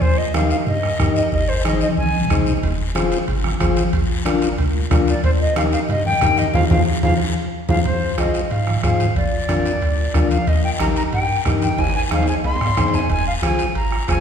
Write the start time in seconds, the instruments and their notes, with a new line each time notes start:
0.01 sub bass D#2, flute C5, bombo low, high conga, long guiro
0.17 flute D#5
0.34 transistor combo organ D#4 G4 A#4, flute F5, bombo rim, high conga, short guiro
0.50 flute F5, short guiro
0.67 sub bass G2, flute D#5, high conga, low conga, long guiro
0.83 bombo rim
0.99 sub bass G2, transistor combo organ D#4 G4 A#4, bombo low, bombo rim, high conga, short guiro
1.16 flute D#5, short guiro
1.32 sub bass G#1, flute D#5, bombo low, high conga, long guiro
1.48 flute C5
1.65 transistor combo organ D#4 G#4 C5, flute D#5, bombo rim, high conga, short guiro
1.81 flute D#5, high conga, short guiro
1.92 high conga
1.97 sub bass C2, flute G#5, long guiro
2.03 high conga
2.13 high conga
2.25 low conga
2.30 sub bass C2, transistor combo organ D#4 G#4 C5, bombo low, bombo rim, short guiro
2.35 low conga
2.46 low conga, short guiro
2.57 low conga
2.63 sub bass F1, bombo low, high conga, high timbale, long guiro
2.95 transistor combo organ F4 G#4 C5, bombo rim, high conga, high timbale, short guiro
3.12 high timbale, short guiro
3.28 sub bass G#1, high conga, low conga, high timbale, long guiro
3.44 bombo rim, high conga
3.60 sub bass G#1, transistor combo organ F4 G#4 C5, bombo low, bombo rim, high conga, high timbale, short guiro
3.76 high conga, high timbale, short guiro
3.93 sub bass A#1, bombo low, high conga, high timbale, long guiro
4.25 transistor combo organ D4 F4 A#4, bombo rim, high conga, high timbale, short guiro
4.42 high timbale, short guiro
4.58 sub bass D2, high conga, low conga, high timbale, long guiro
4.91 sub bass D2, transistor combo organ D4 F4 A#4, bombo low, bombo rim, high conga, low conga, high timbale, low timbale, short guiro
5.08 flute D5, high timbale, short guiro
5.24 sub bass D#2, flute C5, bombo low, high conga, high timbale, long guiro
5.40 flute D#5
5.56 transistor combo organ D#4 G4 A#4, flute F5, bombo rim, high conga, high timbale, short guiro
5.72 flute F5, high timbale, short guiro
5.89 sub bass G2, flute D#5, high conga, low conga, high timbale, long guiro
6.05 flute G5, high conga
6.21 sub bass G2, transistor combo organ D#4 G4 A#4, bombo low, bombo rim, high conga, high timbale, low timbale, short guiro
6.37 flute D#5, high conga, high timbale, short guiro
6.54 sub bass F2, transistor combo organ F4 G#4 C5, flute F5, bombo low, high conga, high timbale, long guiro
6.70 sub bass F2, transistor combo organ F4 G#4 C5, flute F5, bombo low, high conga, high timbale, long guiro
7.03 sub bass F2, transistor combo organ F4 G#4 C5, flute F5, bombo low, high conga, high timbale, long guiro
7.69 sub bass F2, transistor combo organ F4 G#4 C5, flute F5, bombo low, high conga, high timbale, long guiro
7.85 sub bass F2, flute C5, bombo low, high conga, high timbale, long guiro
8.18 sub bass C2, transistor combo organ F4 G#4 C5, flute D#5, bombo rim, high conga, high timbale, short guiro
8.34 high timbale, short guiro
8.51 sub bass G#2, flute F5, high conga, high timbale, long guiro
8.67 bombo rim, high conga
8.83 sub bass G#2, transistor combo organ F4 G#4 C5, flute F5, bombo low, bombo rim, high conga, high timbale, low timbale, short guiro
9.00 high conga, high timbale, short guiro
9.16 sub bass A#1, flute D5, bombo low, high conga, high timbale, long guiro
9.49 sub bass F2, transistor combo organ D4 F4 A#4, bombo rim, high conga, high timbale, short guiro
9.65 high timbale, short guiro
9.82 sub bass D2, high conga, high timbale, long guiro
10.14 sub bass D2, transistor combo organ D4 F4 A#4, bombo low, bombo rim, high conga, high timbale, low timbale, short guiro
10.31 flute F5, high conga, high timbale, short guiro
10.47 sub bass D#2, flute D#5, bombo low, high conga, high timbale, long guiro
10.64 flute G5
10.80 sub bass A#1, transistor combo organ D#4 G4 A#4, flute A#5, bombo rim, high conga, high timbale, short guiro
10.96 flute A#5, high timbale, short guiro
11.13 sub bass G2, flute G5, high conga, high timbale, long guiro
11.45 sub bass G2, transistor combo organ D#4 G4 A#4, bombo low, bombo rim, high conga, high timbale, short guiro
11.62 flute G5, high conga, high timbale, short guiro
11.78 sub bass G#1, flute G#5, bombo low, high conga, high timbale, long guiro
11.89 high timbale
11.95 flute G#5
12.11 sub bass D#2, transistor combo organ D#4 G#4 C5, flute F5, bombo rim, high conga, high timbale, short guiro
12.23 low timbale
12.27 flute G#5, short guiro
12.44 sub bass C2, flute C6, high conga, low timbale, long guiro
12.56 low timbale
12.61 sub bass G#2, bombo rim
12.67 low timbale
12.77 sub bass G2, transistor combo organ D#4 G#4 C5, bombo low, bombo rim, high conga, low timbale, short guiro
12.88 low timbale
12.94 sub bass F2, flute G#5, short guiro
12.99 low timbale
13.10 sub bass F1, flute G#5, bombo low, high conga, high timbale, long guiro
13.27 flute F5
13.42 sub bass C2, transistor combo organ F4 G#4 C5, flute G#5, bombo rim, high conga, high timbale, short guiro
13.59 high timbale, short guiro
13.75 sub bass G#1, flute A#5, high conga, high timbale, long guiro
13.92 bombo rim
14.08 sub bass G#1, transistor combo organ F4 G#4 C5, flute G#5, bombo low, bombo rim, high conga, high timbale, short guiro